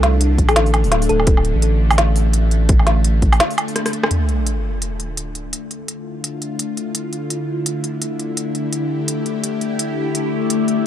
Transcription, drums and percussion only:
0.03 snare, closed hi-hat
0.21 closed hi-hat
0.38 kick, closed hi-hat
0.49 open hi-hat, low woodblock
0.56 snare, closed hi-hat
0.66 open hi-hat
0.74 closed hi-hat, low woodblock
0.84 open hi-hat
0.92 snare, closed hi-hat
1.02 open hi-hat
1.09 closed hi-hat
1.20 low woodblock
1.27 kick, closed hi-hat
1.37 low woodblock
1.45 closed hi-hat
1.62 closed hi-hat
1.91 open hi-hat, low woodblock
1.98 snare, closed hi-hat
2.16 open hi-hat
2.33 closed hi-hat
2.51 closed hi-hat
2.69 kick, closed hi-hat
2.79 low woodblock
2.87 snare, closed hi-hat
3.04 closed hi-hat
3.22 kick, closed hi-hat
3.33 open hi-hat, low woodblock
3.40 snare, closed hi-hat
3.51 open hi-hat
3.58 closed hi-hat, low woodblock
3.68 open hi-hat
3.76 cross-stick, closed hi-hat
3.86 cross-stick, open hi-hat
3.93 closed hi-hat
4.03 cross-stick, low woodblock
4.11 closed hi-hat
4.29 closed hi-hat
4.47 closed hi-hat
4.82 closed hi-hat
5.00 closed hi-hat
5.17 closed hi-hat
5.35 closed hi-hat
5.53 closed hi-hat
5.71 closed hi-hat
5.88 closed hi-hat
6.24 closed hi-hat
6.42 closed hi-hat
6.59 closed hi-hat
6.77 closed hi-hat
6.95 closed hi-hat
7.13 closed hi-hat
7.30 closed hi-hat
7.66 closed hi-hat
7.84 closed hi-hat
8.02 closed hi-hat
8.19 closed hi-hat
8.37 closed hi-hat
8.55 closed hi-hat
8.73 closed hi-hat
9.08 closed hi-hat
9.26 closed hi-hat
9.44 closed hi-hat
9.61 closed hi-hat
9.79 closed hi-hat
10.15 closed hi-hat
10.50 closed hi-hat
10.68 closed hi-hat

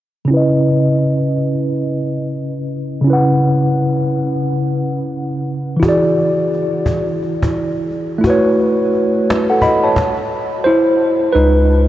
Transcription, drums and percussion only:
5.83 cajon bass
6.19 cajon slap
6.53 cajon slap
6.86 cajon bass
7.09 cajon slap
7.23 cajon slap
7.42 cajon bass
7.56 cajon slap
7.79 cajon slap
7.90 cajon slap
8.24 cajon bass
8.60 cajon slap
8.95 cajon slap
9.16 cajon slap
9.30 cajon slap
9.62 cajon bass
9.96 cajon bass, cajon slap
11.35 cajon slap
11.71 cajon slap

